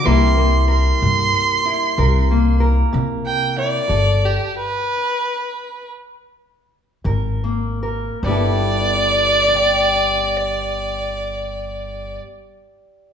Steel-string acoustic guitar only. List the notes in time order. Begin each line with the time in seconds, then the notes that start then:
0.04 C3 G3 A#3 E4 A#4
0.37 A#3
0.68 A#4
1.01 C3
1.65 E4
1.98 C3 A#4
2.31 A#3
2.60 A#4
2.93 C3
3.57 E4
3.88 G2 A4
7.04 G#2 A#4
7.44 A#3
7.83 A#4
8.23 G2 G3
8.27 B3 E4 A4
9.48 D5
9.55 G5